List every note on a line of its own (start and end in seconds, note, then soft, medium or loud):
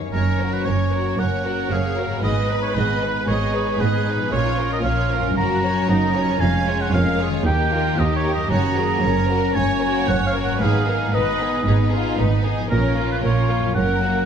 0.00 2.17 F#2 soft
0.00 0.15 D#3 soft
0.00 2.19 A#3 soft
0.00 2.21 C#4 soft
0.00 0.15 D#4 soft
0.00 0.14 C#5 soft
0.00 0.16 D#5 soft
0.00 0.15 F5 soft
0.09 2.23 A#4 soft
0.09 0.55 A#4 medium
0.13 0.58 F#1 soft
0.13 0.58 F#2 soft
0.13 2.20 A#3 soft
0.13 2.20 C#4 soft
0.13 0.39 C#4 soft
0.13 0.39 A#4 soft
0.13 0.38 C#5 soft
0.40 0.67 F#4 soft
0.40 0.66 A#4 soft
0.40 0.67 C#5 soft
0.54 0.67 B4 soft
0.65 1.11 F#1 soft
0.65 1.10 F#2 medium
0.65 0.93 C#4 soft
0.65 0.92 A#4 soft
0.65 1.21 C#5 medium
0.65 0.93 C#5 soft
0.92 1.19 F#4 soft
0.92 1.19 A#4 soft
0.92 1.19 C#5 soft
1.18 1.63 F#1 soft
1.18 1.63 F#2 medium
1.18 1.44 C#4 soft
1.18 1.26 A#4 soft
1.18 1.44 A#4 soft
1.18 1.44 C#5 soft
1.18 1.74 F#5 medium
1.45 1.71 F#4 soft
1.45 1.72 F#4 soft
1.45 1.71 A#4 soft
1.45 1.71 C#5 soft
1.71 2.15 F#1 soft
1.71 2.16 F#2 medium
1.71 1.97 C#4 soft
1.71 1.98 G#4 soft
1.71 1.98 A#4 soft
1.71 1.98 C#5 soft
1.71 2.23 F5 medium
1.95 2.23 F#4 soft
1.95 2.24 A#4 soft
1.95 2.23 C#5 soft
2.05 4.26 G#2 soft
2.10 4.28 G#3 soft
2.14 4.30 B3 soft
2.19 4.32 B4 soft
2.23 2.68 G#1 medium
2.23 2.67 G#2 soft
2.23 4.32 G#3 soft
2.23 2.48 B3 soft
2.23 2.48 G#4 soft
2.23 3.28 B4 medium
2.23 2.48 D#5 soft
2.23 2.62 D#5 medium
2.50 2.76 D#4 soft
2.50 2.76 B4 soft
2.62 2.76 C#5 medium
2.75 3.20 G#1 medium
2.75 3.20 G#2 soft
2.75 3.02 B3 soft
2.75 3.02 G#4 soft
2.75 3.27 B4 medium
2.75 3.02 D#5 soft
3.01 3.28 D#4 soft
3.01 3.28 B4 soft
3.01 3.29 B4 soft
3.26 3.72 G#1 medium
3.26 3.72 G#2 medium
3.26 3.52 B3 soft
3.26 3.51 G#4 soft
3.26 4.33 G#4 medium
3.26 3.82 C#5 medium
3.26 3.53 D#5 soft
3.51 3.79 D#4 soft
3.51 3.79 B4 soft
3.51 3.81 B4 soft
3.80 4.24 G#1 medium
3.80 4.24 G#2 medium
3.80 4.06 B3 soft
3.80 4.06 G#4 soft
3.80 4.32 B4 medium
3.80 4.07 D#5 soft
4.06 4.32 D#4 soft
4.06 4.32 B4 soft
4.06 4.33 B4 soft
4.15 5.30 A#2 soft
4.19 5.32 F3 soft
4.24 5.26 C#4 soft
4.28 5.34 F3 soft
4.28 7.45 C#4 soft
4.28 6.41 A#4 soft
4.32 4.76 A#1 medium
4.32 4.76 A#2 medium
4.32 4.57 A#3 soft
4.32 4.57 F4 soft
4.32 4.85 F4 medium
4.32 4.71 C#5 medium
4.32 4.57 C#5 soft
4.57 4.84 C#4 soft
4.57 4.85 A#4 soft
4.73 4.78 D#5 medium
4.84 5.29 A#1 medium
4.84 5.28 A#2 medium
4.84 5.12 A#3 soft
4.84 5.11 C#4 soft
4.84 5.12 F4 soft
4.84 5.10 C#5 soft
4.84 5.35 F5 medium
5.11 5.38 C#4 soft
5.11 5.37 F4 soft
5.11 5.36 A#4 soft
5.19 6.34 F#2 soft
5.23 6.37 F#3 soft
5.28 6.30 C#4 soft
5.32 6.40 F#3 soft
5.32 5.60 A#3 soft
5.32 5.61 F#4 soft
5.32 6.35 C#5 soft
5.37 5.81 F#1 medium
5.37 5.81 F#2 medium
5.37 5.89 F#4 medium
5.37 5.61 A#4 soft
5.37 5.88 A#5 medium
5.62 5.89 C#4 soft
5.62 5.89 A#4 soft
5.62 5.90 C#5 soft
5.89 6.33 F#1 medium
5.89 6.33 F#2 medium
5.89 6.15 A#3 soft
5.89 6.15 D#4 medium
5.89 6.15 F#4 soft
5.89 6.16 A#4 soft
5.89 6.42 A#5 medium
6.15 6.39 C#4 soft
6.15 6.94 C#4 soft
6.15 6.42 A#4 soft
6.15 6.41 C#5 soft
6.22 7.39 F2 soft
6.27 7.41 G#3 soft
6.32 7.43 C#4 soft
6.36 7.43 G#3 medium
6.36 7.45 C#5 soft
6.40 6.85 F1 medium
6.40 6.85 F2 medium
6.40 6.65 C#4 medium
6.40 6.66 F5 soft
6.40 6.83 G#5 medium
6.66 6.93 G#3 soft
6.66 6.94 F4 soft
6.66 6.94 C#5 soft
6.82 6.93 F#5 medium
6.93 7.38 F1 medium
6.93 7.38 F2 medium
6.93 7.20 C#4 soft
6.93 7.20 A#4 medium
6.93 7.27 F5 medium
6.93 7.20 F5 soft
7.18 7.45 G#3 soft
7.18 7.45 F4 soft
7.18 7.47 G#4 medium
7.18 7.46 C#5 soft
7.28 8.44 D#3 soft
7.33 8.37 A#3 soft
7.37 8.49 D#4 soft
7.42 8.34 A#3 medium
7.42 8.34 D#4 medium
7.42 8.46 A#4 soft
7.46 7.90 D#2 medium
7.46 7.71 D#4 soft
7.46 7.72 G4 medium
7.46 7.71 G4 soft
7.46 8.01 G5 medium
7.73 7.99 A#3 medium
7.73 7.99 F4 medium
7.73 7.99 G4 medium
7.73 7.99 A#4 soft
7.98 8.43 D#2 medium
7.98 8.26 D#4 soft
7.98 8.24 G4 soft
7.98 8.52 G4 medium
7.98 8.16 D#5 medium
8.16 8.33 C#5 medium
8.24 8.53 A#3 soft
8.24 8.53 G4 soft
8.24 8.51 A#4 soft
8.34 10.54 F#2 soft
8.34 8.50 D#5 medium
8.38 10.57 A#3 soft
8.43 10.59 C#4 soft
8.47 8.95 F#2 medium
8.47 10.57 C#4 medium
8.47 8.78 F#4 medium
8.47 10.61 A#4 soft
8.47 8.76 C#5 medium
8.47 9.56 A#5 medium
8.52 8.95 F#1 medium
8.52 10.57 A#3 medium
8.52 8.77 C#4 medium
8.77 9.04 A#3 soft
8.77 9.04 F#4 soft
8.77 9.04 G#4 medium
8.77 9.03 A#4 soft
9.02 9.48 F#1 medium
9.02 9.47 F#2 medium
9.02 9.31 C#4 soft
9.02 9.55 A#4 medium
9.02 9.29 C#5 soft
9.28 9.56 A#3 soft
9.28 9.56 F#4 soft
9.28 9.55 A#4 soft
9.55 10.00 F#1 medium
9.55 10.00 F#2 medium
9.55 9.81 C#4 soft
9.55 9.80 C#5 soft
9.55 10.59 C#5 medium
9.55 10.09 G#5 medium
9.81 10.10 F#4 medium
9.81 10.08 A#4 soft
9.85 10.10 A#3 soft
10.06 10.53 F#1 medium
10.06 10.52 F#2 medium
10.06 10.34 C#5 soft
10.06 10.26 F#5 medium
10.10 10.36 C#4 soft
10.27 10.35 F5 medium
10.33 10.62 A#3 soft
10.33 10.62 F#4 soft
10.33 10.60 A#4 soft
10.43 12.65 G#2 soft
10.43 10.63 F#5 medium
10.47 12.67 G#3 soft
10.52 12.69 B3 soft
10.57 12.67 B3 medium
10.57 12.67 D#4 medium
10.57 12.71 B4 soft
10.57 10.84 B4 soft
10.61 11.05 G#1 medium
10.61 11.05 G#2 medium
10.61 10.85 B3 soft
10.61 10.85 D#4 medium
10.61 10.87 G#4 medium
10.61 11.16 F5 medium
10.86 11.11 B3 soft
10.86 11.12 D#4 soft
10.86 11.13 G#4 soft
10.86 10.95 A#4 medium
11.12 11.58 G#1 medium
11.12 11.58 G#2 medium
11.12 11.37 B3 soft
11.12 11.37 D#4 soft
11.12 11.39 B4 soft
11.12 11.66 B4 medium
11.12 11.93 D#5 medium
11.39 11.64 B3 soft
11.39 11.64 D#4 soft
11.39 11.66 G#4 soft
11.64 12.11 G#1 medium
11.64 12.10 G#2 medium
11.64 11.90 B3 soft
11.64 11.90 D#4 soft
11.64 11.76 G#4 medium
11.64 11.90 B4 soft
11.91 12.16 B3 soft
11.91 12.17 D#4 soft
11.91 12.19 F4 medium
11.91 12.18 G#4 soft
12.17 12.63 G#1 medium
12.17 12.63 G#2 medium
12.17 12.43 B3 soft
12.17 12.43 D#4 soft
12.17 12.71 D#4 soft
12.17 12.44 B4 soft
12.44 12.71 B3 soft
12.44 12.71 D#4 soft
12.44 12.71 G#4 soft
12.54 13.70 A#2 soft
12.58 13.72 F3 soft
12.63 13.66 C#4 soft
12.68 13.16 A#2 medium
12.68 14.25 A#3 medium
12.68 12.96 C#4 medium
12.68 13.23 C#4 medium
12.68 13.71 F4 medium
12.68 13.71 A#4 soft
12.68 13.08 A#4 medium
12.68 12.96 A#4 soft
12.72 13.16 A#1 medium
12.96 13.24 A#3 soft
12.96 13.23 F4 soft
13.12 13.17 B4 medium
13.23 13.68 A#1 medium
13.23 13.68 A#2 medium
13.23 13.50 C#4 soft
13.23 13.76 F4 medium
13.23 13.50 A#4 soft
13.23 13.74 C#5 medium
13.49 13.77 A#3 soft
13.49 13.76 F4 soft
13.58 14.25 F#2 soft
13.63 14.25 F#3 soft
13.67 14.25 C#4 soft
13.72 14.25 A#4 soft
13.72 14.25 F#5 medium
13.76 14.21 F#1 medium
13.76 14.21 F#2 medium
13.76 14.01 C#4 soft
13.76 14.25 C#4 medium
13.76 14.01 A#4 soft
13.76 14.25 A#4 medium
14.02 14.25 A#3 soft
14.02 14.25 F#4 soft